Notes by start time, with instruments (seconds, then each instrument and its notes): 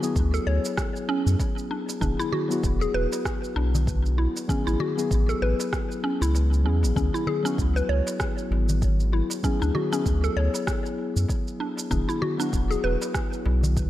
Already playing: synth keys F#3 B3 E4 G#4
0.02 synth keys F#3 B3 E4 G#4, darbuka tek, shaker
0.16 sub bass D2, kick, shaker
0.34 synth pluck A4, shaker
0.46 sub bass D2, synth pluck C#5, darbuka ka
0.65 darbuka tek, shaker
0.77 kick, cross-stick, shaker
0.96 darbuka ka, shaker
1.09 synth pluck C#4, darbuka ka
1.26 sub bass F#2, shaker
1.40 kick, darbuka ka, shaker
1.58 shaker
1.71 synth pluck D4
1.89 darbuka ka, shaker
2.00 sub bass E1, synth keys F#3 B3 E4 G#4, synth pluck D4, kick, darbuka dum, shaker
2.19 synth pluck E4, shaker
2.32 synth pluck F#4, darbuka dum
2.48 synth keys F#3 B3 E4, shaker
2.52 synth keys F#4
2.63 sub bass E1, kick, shaker
2.81 synth pluck G#4, shaker
2.94 sub bass E1, synth pluck B4, darbuka ka
3.12 darbuka tek, shaker
3.25 kick, cross-stick, shaker
3.44 shaker
3.56 sub bass B1, synth pluck D4, darbuka tek
3.75 darbuka dum, shaker
3.87 kick, shaker
4.06 shaker
4.18 synth pluck E4, darbuka ka
4.37 darbuka ka, shaker
4.48 synth keys F#3 B3 E4 G#4, synth pluck C#4, kick, darbuka dum, shaker
4.67 sub bass A1, synth pluck E4, shaker
4.80 synth pluck F#4, darbuka dum
4.97 synth keys F#3 B3 E4 G#4, darbuka tek, shaker
5.11 sub bass A1, kick, shaker
5.29 synth pluck A4, shaker
5.42 sub bass A1, synth pluck B4, darbuka ka
5.60 darbuka tek, shaker
5.73 kick, cross-stick, shaker
5.90 darbuka ka, shaker
6.03 synth pluck C#4, darbuka ka
6.21 sub bass C#2, synth pluck E4, darbuka tek, shaker
6.35 darbuka ka, shaker
6.53 shaker
6.64 sub bass E2, synth keys F#3 B3 E4 G#4, synth pluck C#4
6.83 sub bass A1, darbuka ka, shaker
6.96 sub bass C#2, synth keys F#3 B3 E4 G#4, synth pluck C#4, kick, darbuka dum, shaker
7.14 synth pluck E4, shaker
7.27 synth pluck G#4, darbuka dum
7.43 synth keys F#3 B3 E4 F#4, synth pluck C#4, shaker
7.58 sub bass C#2, kick, shaker
7.76 synth pluck B4, shaker
7.89 sub bass C#2, synth pluck C#5, darbuka ka
8.07 darbuka tek, shaker
8.20 kick, cross-stick, shaker
8.38 shaker
8.51 sub bass G#1, darbuka tek
8.69 darbuka dum, shaker
8.82 kick, shaker
9.00 shaker
9.13 synth pluck E4, darbuka ka
9.30 darbuka ka, shaker
9.43 synth keys F#3 B3 E4 G#4, synth pluck C#4, kick, shaker
9.62 sub bass D2, synth pluck D4, shaker
9.75 synth pluck F#4, darbuka dum
9.92 synth keys F#3 B3 E4 G#4, synth pluck C#4, darbuka tek, shaker
10.06 sub bass D2, kick, shaker
10.24 synth pluck A4, shaker
10.36 sub bass D2, synth pluck C#5, darbuka ka
10.54 darbuka tek, shaker
10.67 kick, cross-stick, shaker
10.86 darbuka ka, shaker
10.98 darbuka ka
11.16 sub bass F#2, shaker
11.29 kick, darbuka ka, shaker
11.48 shaker
11.60 synth pluck D4
11.77 darbuka ka, shaker
11.90 sub bass E1, synth keys F#3 B3 E4 G#4, synth pluck D4, kick, darbuka dum, shaker
12.09 synth pluck E4, shaker
12.22 synth pluck F#4, darbuka dum
12.38 synth keys F#3 B3 E4, synth pluck D4, shaker
12.42 synth keys F#4
12.53 sub bass E1, kick, shaker
12.71 synth pluck G#4, shaker
12.83 sub bass E1, synth pluck B4, darbuka ka
13.02 darbuka tek, shaker
13.14 kick, cross-stick, shaker
13.33 shaker
13.46 sub bass B1, darbuka tek
13.63 darbuka dum, shaker
13.77 kick, shaker